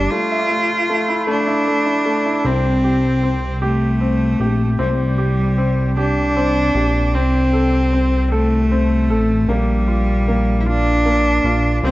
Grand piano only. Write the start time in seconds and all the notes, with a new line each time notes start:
Already playing: G3 D4
0.12 A3
0.32 E5
0.50 A3
0.70 F4
0.90 A3
1.08 E4
1.27 A3
1.47 E4
1.67 A3
1.86 E4
2.06 A3
2.26 E4
2.45 C4
2.84 G4
3.23 C4
3.62 G4
4.01 C4
4.40 G4
4.79 C4
5.18 G4
5.58 C4
5.97 G4
6.37 C4
6.75 G4
7.15 C4
7.53 A4
7.93 C4
8.32 A4
8.72 C4
9.10 A4
9.49 A#3
9.88 F4
10.28 A#3
10.66 F4
11.06 A#3
11.45 F4
11.84 C4